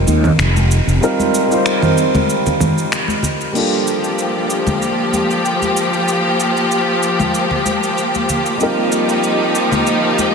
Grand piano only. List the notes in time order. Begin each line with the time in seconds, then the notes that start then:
Already playing: G3 C4 D#4 F4 A#4 C5
1.01 G3 C4 D#4 F4 A#4
1.48 G3 C4 D#4
1.52 F4 C5
3.52 G3 A#3 D4
3.57 F4 A4
8.57 G3 C4 D#4
8.62 F4 A#4